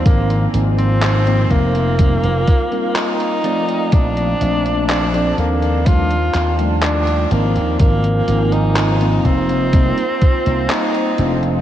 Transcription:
Already playing: tine electric piano F3 A#3 C4 D#4, ambient pad F4 C5 F5 G#5
0.06 slap bass G#1, tenor saxophone A#3, kick, closed hi-hat
0.30 closed hi-hat
0.53 slap bass G#1, tine electric piano F3 A#3 C4 D#4, closed hi-hat
0.78 tenor saxophone C4, closed hi-hat
1.02 clap, closed hi-hat
1.26 tine electric piano F3 A#3 C4 D#4, closed hi-hat
1.51 slap bass F1, tenor saxophone A#3, kick, closed hi-hat
1.75 closed hi-hat
1.98 tine electric piano G3 A#3 C4 D#4, ambient pad D#4 F4 G5, kick, closed hi-hat
2.24 slap bass F1, closed hi-hat
2.47 kick, closed hi-hat
2.71 tine electric piano G3 A#3 C4 D#4, closed hi-hat
2.96 tenor saxophone D#4, clap, closed hi-hat
3.20 closed hi-hat
3.44 tine electric piano F3 A3 C4 D5, closed hi-hat
3.69 closed hi-hat
3.92 slap bass A#1, ambient pad D4 C5 A5, tenor saxophone D4, kick, closed hi-hat
4.17 closed hi-hat
4.40 slap bass A#1, tine electric piano F3 A3 C4 D4, closed hi-hat
4.66 closed hi-hat
4.89 tenor saxophone D4, clap, closed hi-hat
5.13 tine electric piano F3 C4 D4 A4, closed hi-hat
5.38 slap bass D#2, tenor saxophone A#3, closed hi-hat
5.62 closed hi-hat
5.86 tine electric piano F3 G3 A3 D4, ambient pad F4 D5 G5 A5, tenor saxophone F4, kick, closed hi-hat
6.10 closed hi-hat
6.34 slap bass D#2, clap, closed hi-hat
6.59 tine electric piano F3 G3 A3 D4, closed hi-hat
6.83 tenor saxophone D4, clap, closed hi-hat
7.07 closed hi-hat
7.31 slap bass G#1, tine electric piano F3 A#3 C4 D#4, tenor saxophone A#3, ambient pad F4 C5 F5 G#5, closed hi-hat
7.56 slap bass D#2, closed hi-hat
7.80 slap bass G#1, tenor saxophone A#3, kick, closed hi-hat
8.04 closed hi-hat
8.28 slap bass G#1, tine electric piano F3 A#3 C4 D#4, closed hi-hat
8.52 tenor saxophone D#4, closed hi-hat
8.76 clap, closed hi-hat
9.00 tine electric piano F3 A#3 C4 D#4, closed hi-hat
9.25 slap bass F1, tenor saxophone C4, kick, closed hi-hat
9.49 closed hi-hat
9.73 tine electric piano G3 A#3 C4 D#4, ambient pad C5 G5, kick, closed hi-hat
9.98 closed hi-hat
10.22 kick, closed hi-hat
10.46 slap bass C2, tine electric piano G3 A#3 C4 D#4, closed hi-hat
10.70 tenor saxophone D#4, clap, closed hi-hat
10.94 closed hi-hat
11.18 slap bass F1, tine electric piano F3 A3 C4 D4, closed hi-hat
11.43 closed hi-hat

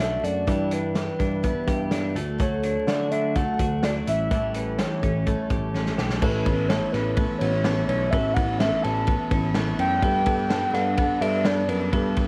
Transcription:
Already playing: tine electric piano B1, clean electric guitar A3 F#4
0.00 steel-string acoustic guitar A3 D4 F#4 A4, clean electric guitar D4, soft synth lead E5, closed hi-hat
0.23 tine electric piano F#2, steel-string acoustic guitar D4 F#4 A4, clean electric guitar F#4, soft synth lead D5, closed hi-hat
0.47 tine electric piano G2, clean electric guitar E3 G4, steel-string acoustic guitar G3 D4 E4 B4, kick, closed hi-hat
0.71 clean electric guitar D4, soft synth lead B4, closed hi-hat
0.95 steel-string acoustic guitar G3 D4 E4 B4, clean electric guitar G4, soft synth lead B4, snare, closed hi-hat
1.19 tine electric piano G2, clean electric guitar D4, kick, snare, closed hi-hat
1.43 steel-string acoustic guitar G3 D4 E4 B4, clean electric guitar B3, kick, closed hi-hat
1.67 tine electric piano G2, clean electric guitar G4, kick, closed hi-hat
1.91 steel-string acoustic guitar G3 D4 E4 B4, clean electric guitar D4, snare, closed hi-hat
2.15 tine electric piano D2, clean electric guitar A3, steel-string acoustic guitar A3 F#4 A4, closed hi-hat
2.38 steel-string acoustic guitar D3 F#3 A3 F#4 A4, clean electric guitar A3 F#4, soft synth lead C#5, kick, closed hi-hat
2.63 clean electric guitar D4, closed hi-hat
2.87 tine electric piano D3, steel-string acoustic guitar F#3 A3 F#4 A4, clean electric guitar E4, soft synth lead D5, snare, closed hi-hat
3.00 clean electric guitar F#4
3.11 tine electric piano D3, clean electric guitar D4, soft synth lead E5, closed hi-hat
3.35 steel-string acoustic guitar D3 F#3 A3 F#4 A4, clean electric guitar A3, soft synth lead F#5, kick, closed hi-hat
3.59 tine electric piano D2, clean electric guitar F#4, kick, closed hi-hat
3.83 steel-string acoustic guitar F#3 A3 F#4 A4, clean electric guitar D4, soft synth lead D5, snare, closed hi-hat
4.07 tine electric piano A1, clean electric guitar E3, steel-string acoustic guitar G3 A3 C#4 A4, soft synth lead E5, closed hi-hat
4.31 steel-string acoustic guitar A2 E3 G3 A3 C#4 A4, clean electric guitar E3 G4, kick, closed hi-hat
4.54 clean electric guitar C#4, soft synth lead B4, closed hi-hat
4.78 steel-string acoustic guitar G3 A3 C#4 A4, clean electric guitar G4, soft synth lead C#5, snare, closed hi-hat
5.02 tine electric piano A1, steel-string acoustic guitar G3 A3 C#4 A4, clean electric guitar C#4, kick, closed hi-hat
5.26 steel-string acoustic guitar A2 E3 G3 A3 C#4 A4, clean electric guitar A3, kick, closed hi-hat
5.50 tine electric piano A1, clean electric guitar G4, kick, closed hi-hat
5.74 steel-string acoustic guitar G3 A3 C#4 A4, clean electric guitar C#4, snare
5.86 snare
5.98 tine electric piano B1, steel-string acoustic guitar G3 A3 C#4 A4, clean electric guitar G4, snare
6.10 snare
6.22 tine electric piano A1, clean electric guitar E3 A4, steel-string acoustic guitar A3 C#4 E4 B4, upright piano C#4 A4 B4, soft synth lead B4, kick, crash
6.46 clean electric guitar B3, steel-string acoustic guitar C#4 E4 B4, kick, ride
6.69 steel-string acoustic guitar A3 C#4 E4 B4, clean electric guitar A4, soft synth lead C#5, snare, ride
6.92 tine electric piano A1, clean electric guitar C#4, steel-string acoustic guitar E4 B4, soft synth lead B4, snare, ride
6.97 steel-string acoustic guitar C#4
7.17 steel-string acoustic guitar A3 C#4 E4, clean electric guitar B3, kick, ride
7.21 steel-string acoustic guitar B4
7.39 tine electric piano A1, clean electric guitar B3, steel-string acoustic guitar B4, soft synth lead C#5, ride
7.44 steel-string acoustic guitar C#4 E4
7.53 clean electric guitar C#4
7.64 steel-string acoustic guitar A3 C#4 E4 B4, clean electric guitar B3, snare, ride
7.87 tine electric piano B1, clean electric guitar C#4, soft synth lead C#5, ride
8.11 tine electric piano A1, clean electric guitar E3 A4, steel-string acoustic guitar A3 C#4 E4 B4, upright piano C#4 A4 B4, soft synth lead E5, kick, ride
8.34 clean electric guitar B3, steel-string acoustic guitar E4 B4, soft synth lead F#5, kick, ride
8.39 steel-string acoustic guitar C#4
8.59 steel-string acoustic guitar A3 C#4 E4 B4, clean electric guitar A4, soft synth lead E5, snare, ride
8.83 tine electric piano A1, clean electric guitar C#4, steel-string acoustic guitar E4 B4, soft synth lead A5, ride
8.88 steel-string acoustic guitar C#4
9.07 steel-string acoustic guitar A3 C#4 E4, clean electric guitar B3, kick, ride
9.11 steel-string acoustic guitar B4
9.31 tine electric piano A1, clean electric guitar C#4, steel-string acoustic guitar C#4 E4 B4, kick, ride
9.54 steel-string acoustic guitar A3 C#4 E4 B4, clean electric guitar B3, snare, ride
9.79 tine electric piano F#2, clean electric guitar C#4, soft synth lead G5, ride
10.02 tine electric piano G2, steel-string acoustic guitar G3 B3 D4 A4, upright piano B3 G4 A4, clean electric guitar B3 A4, kick, ride
10.26 clean electric guitar B3, steel-string acoustic guitar B3 D4 A4, kick, ride
10.50 steel-string acoustic guitar G3 B3 D4 A4, clean electric guitar A4, snare, ride
10.73 tine electric piano G2, steel-string acoustic guitar B3 D4 A4, clean electric guitar D4, soft synth lead F#5, snare, ride
10.97 steel-string acoustic guitar G3 B3 D4 A4, clean electric guitar B3, kick, ride
11.21 tine electric piano G2, steel-string acoustic guitar B3 D4 A4, clean electric guitar D4, soft synth lead E5, ride
11.45 steel-string acoustic guitar G3 B3 D4 A4, clean electric guitar B3, soft synth lead D5, snare, ride
11.68 tine electric piano F#2, clean electric guitar D4, soft synth lead B4, ride
11.92 tine electric piano G2, steel-string acoustic guitar G3 B3 D4 A4, upright piano B3 G4 B4, clean electric guitar B3 A4, kick, ride
12.16 clean electric guitar B3, steel-string acoustic guitar B3 D4 A4, kick, ride

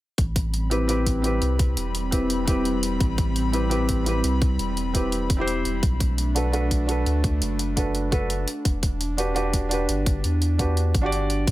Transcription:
0.18 sub bass A1, analog synth pad G3 C4 B5, kick, closed hi-hat
0.36 kick, closed hi-hat
0.54 closed hi-hat
0.70 felt piano C4 E4 G4 B4, closed hi-hat
0.88 felt piano C4 E4 G4 B4, closed hi-hat
1.06 kick, closed hi-hat
1.22 felt piano C4 E4 G4, closed hi-hat
1.26 felt piano B4
1.42 sub bass C2, closed hi-hat
1.59 kick, closed hi-hat
1.77 sub bass E1, closed hi-hat
1.95 closed hi-hat
2.11 felt piano C4 E4 G4 B4, kick, closed hi-hat
2.30 closed hi-hat
2.46 felt piano C4 E4 G4, kick, closed hi-hat
2.50 felt piano B4
2.65 closed hi-hat
2.83 closed hi-hat
3.00 sub bass A1, kick, closed hi-hat
3.18 kick, closed hi-hat
3.36 closed hi-hat
3.52 felt piano C4 E4 G4 B4, closed hi-hat
3.70 felt piano C4 E4 G4 B4, closed hi-hat
3.89 kick, closed hi-hat
4.04 felt piano C4 E4 G4, closed hi-hat
4.09 felt piano B4
4.24 sub bass C2, closed hi-hat
4.42 kick, closed hi-hat
4.59 sub bass E1, closed hi-hat
4.77 closed hi-hat
4.94 felt piano C4 E4 G4 B4, kick, closed hi-hat
5.12 closed hi-hat
5.30 kick, closed hi-hat
5.37 felt piano C4 E4 G4
5.41 felt piano C5
5.48 closed hi-hat
5.65 sub bass E1, closed hi-hat
5.83 sub bass B1, analog synth pad A3 D4, kick, closed hi-hat
6.00 kick, closed hi-hat
6.18 closed hi-hat
6.35 felt piano D4 F#4 A4 B4, closed hi-hat
6.52 felt piano D4 F#4 A4 B4, closed hi-hat
6.71 kick, closed hi-hat
6.86 felt piano D4 F#4 A4, closed hi-hat
6.91 felt piano B4
7.06 sub bass D2, closed hi-hat
7.24 kick, closed hi-hat
7.42 sub bass F#1, closed hi-hat
7.59 closed hi-hat
7.76 felt piano D4 F#4 A4 B4, kick, closed hi-hat
7.95 closed hi-hat
8.11 felt piano D4 F#4 A4 B4, kick, closed hi-hat
8.30 closed hi-hat
8.48 analog synth pad D4, closed hi-hat
8.65 sub bass E1, kick, closed hi-hat
8.83 kick, closed hi-hat
9.01 closed hi-hat
9.17 felt piano D4 F#4 G4 B4, closed hi-hat
9.35 felt piano D4 F#4 G4 B4, closed hi-hat
9.53 kick, closed hi-hat
9.69 felt piano D4 F#4 G4, closed hi-hat
9.73 felt piano B4
9.89 sub bass G1, closed hi-hat
10.06 kick, closed hi-hat
10.24 sub bass E2, closed hi-hat
10.42 closed hi-hat
10.58 felt piano D4 F#4 G4 B4, kick, closed hi-hat
10.77 closed hi-hat
10.95 sub bass G1, kick, closed hi-hat
11.01 felt piano D4 F#4 G4
11.06 felt piano D5
11.12 closed hi-hat
11.30 closed hi-hat
11.47 sub bass A1, analog synth pad G3 C4 B5, kick, closed hi-hat

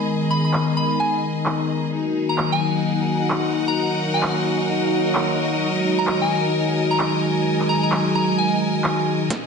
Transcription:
Already playing: analog synth pad D#3 G#3 B3 A#4, string section G#4 D#5
0.30 synth bell B5
0.45 synth bell B5
0.53 clap
0.77 synth bell B5
1.00 synth bell G#5
1.46 clap
1.92 analog synth pad F#3 A#3 F#4, string section D#4
2.29 string section A#4, synth bell A#5
2.38 string section D#5, clap
2.52 synth bell G#5
2.69 string section F#5
3.30 clap
3.68 synth bell A#5
4.14 synth bell G#5
4.23 clap
5.15 clap
5.61 analog synth pad G#3
5.99 synth bell A#5
6.07 clap
6.22 synth bell G#5, string section G#5
6.91 synth bell A#5
7.00 clap
7.60 clap
7.69 synth bell A#5
7.83 synth bell A#5
7.92 clap
8.15 synth bell A#5
8.38 synth bell G#5
8.84 clap
9.30 analog synth pad D#3 G#3 B3 G#4, string section G#4, kick, snare, closed hi-hat, riser

